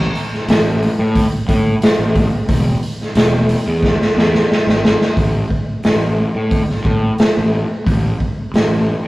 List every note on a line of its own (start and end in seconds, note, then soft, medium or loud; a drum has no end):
0.15 open hi-hat medium
0.34 snare soft
0.48 0.86 A1 medium
0.48 snare loud
0.48 open hi-hat medium
0.83 open hi-hat medium
0.98 1.24 A2 medium
1.15 kick medium
1.15 open hi-hat medium
1.49 1.74 A2 medium
1.49 kick medium
1.49 open hi-hat medium
1.82 snare loud
1.82 open hi-hat medium
1.99 2.24 A1 loud
2.16 kick medium
2.16 open hi-hat medium
2.49 2.74 E1 loud
2.49 kick loud
2.49 open hi-hat medium
2.83 open hi-hat medium
3.02 snare soft
3.15 3.54 E1 loud
3.15 snare loud
3.15 open hi-hat medium
3.49 open hi-hat medium
3.67 3.92 E2 medium
3.83 kick medium
3.83 snare medium
4.02 snare medium
4.17 4.42 E2 loud
4.17 snare medium
4.35 snare medium
4.52 snare medium
4.67 4.92 G#1 loud
4.67 snare medium
4.85 snare loud
5.02 snare medium
5.17 5.43 A1 medium
5.17 kick loud
5.17 open hi-hat soft
5.50 kick medium
5.83 6.24 A1 medium
5.83 snare medium
5.83 open hi-hat soft
6.35 6.61 A2 medium
6.51 kick loud
6.51 open hi-hat soft
6.70 snare soft
6.85 7.11 A2 medium
6.85 kick medium
7.18 snare loud
7.18 open hi-hat medium
7.37 7.62 A1 loud
7.86 8.12 A1 medium
7.86 kick loud
7.86 open hi-hat soft
8.20 kick medium
8.54 8.92 A1 medium
8.54 snare loud
8.54 open hi-hat soft